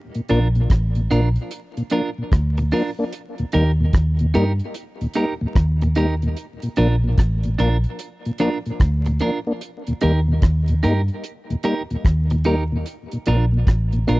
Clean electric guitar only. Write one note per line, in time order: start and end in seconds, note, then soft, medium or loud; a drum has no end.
0.29 0.47 D4 medium
0.29 0.47 F4 medium
0.29 0.47 A#4 medium
1.11 1.28 D4 medium
1.11 1.28 F4 medium
1.11 1.28 A#4 medium
1.91 2.09 D4 medium
1.91 2.09 F4 medium
1.91 2.09 A#4 medium
2.58 muted clean electric guitar stroke medium
2.72 2.90 D4 medium
2.72 2.90 F4 medium
2.72 2.90 A#4 medium
3.53 3.71 D#4 medium
3.53 3.71 G4 medium
3.53 3.71 A#4 loud
4.34 4.51 D#4 medium
4.34 4.52 G4 medium
4.34 4.52 A#4 medium
5.16 5.33 D#4 medium
5.16 5.33 G4 medium
5.16 5.33 A#4 medium
5.82 muted clean electric guitar stroke medium
5.96 6.14 D#4 medium
5.96 6.14 G4 medium
5.96 6.14 A#4 medium
6.77 6.95 D4 medium
6.77 6.95 F4 medium
6.77 6.95 A#4 medium
7.58 7.76 D4 medium
7.58 7.76 F4 medium
7.58 7.77 A#4 loud
8.40 8.57 D4 medium
8.40 8.58 F4 medium
8.40 8.58 A#4 medium
9.06 muted clean electric guitar stroke medium
9.21 9.38 D4 medium
9.21 9.38 F4 medium
9.21 9.39 A#4 medium
10.02 10.19 D#4 medium
10.02 10.19 G4 medium
10.02 10.20 A#4 medium
10.83 11.00 D#4 medium
10.83 11.01 G4 medium
10.83 11.01 A#4 medium
11.64 11.81 D#4 medium
11.64 11.82 G4 medium
11.64 11.82 A#4 medium
12.31 muted clean electric guitar stroke soft
12.45 12.63 D#4 medium
12.45 12.63 G4 medium
12.45 12.63 A#4 loud
13.27 13.44 D4 medium
13.27 13.44 F4 medium
13.27 13.45 A#4 medium
14.08 14.20 D4 medium
14.08 14.20 F4 medium
14.08 14.20 A#4 medium